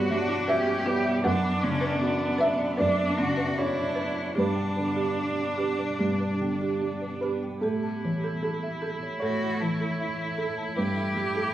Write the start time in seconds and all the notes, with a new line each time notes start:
Already playing: G2 G3 B3 E4 F#4 B4 C#5 D5 F#5
0.10 G3 D4 E5
0.29 E4
0.48 C#4 F#4 G4 B4 E5
0.67 G4
0.86 B3 E4 B4
1.04 E5
1.24 F#2 D4 B4 F#5
1.43 B5
1.62 C#3 C#4 D5
1.81 B4
2.01 B3 F#4
2.19 F#5
2.38 B4 E5
2.58 D5
2.77 F#2 D4 B4 D5
2.97 D5
3.17 C#3 F#4 B5
3.37 B4
3.56 D4 E4 F#4 C#5 F#5
3.75 D5
3.95 B4
4.15 B5
4.35 G2 B3 D4 G4 B4
4.56 G5
4.76 D3 B4
4.96 G4
5.19 G4
5.38 D5
5.57 G4 B4
5.78 B4
5.99 G2 G4
6.20 B4
6.41 D3 G5
6.61 G4
6.81 G4 D5
7.01 B4
7.21 G4 B4
7.43 G5
7.61 A2 A3 E4 A4
7.83 A5
8.04 E3 C#5
8.24 A4
8.43 E4 A4
8.63 E5
8.82 A4
9.03 C#5
9.20 A2 F#4 A4 C#5
9.42 C#5
9.60 E3 E4 A5
9.80 A4
10.00 E4 E5
10.19 C#5
10.38 A4
10.57 A5
10.76 G2 B3 E4 G4 B4 F#5
10.96 E5
11.16 G3 G4
11.35 E4 A4